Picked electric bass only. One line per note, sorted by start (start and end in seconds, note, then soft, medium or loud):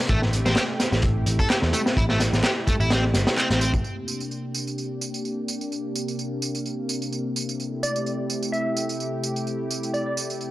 0.09 0.42 A1 medium
0.46 0.54 A1 medium
0.92 1.23 A1 medium
1.27 1.37 A1 medium
1.63 1.72 E2 loud
1.97 2.29 A1 loud
2.33 2.42 A1 medium
2.80 3.11 A1 medium
3.14 3.24 G1 medium
3.50 3.81 A1 medium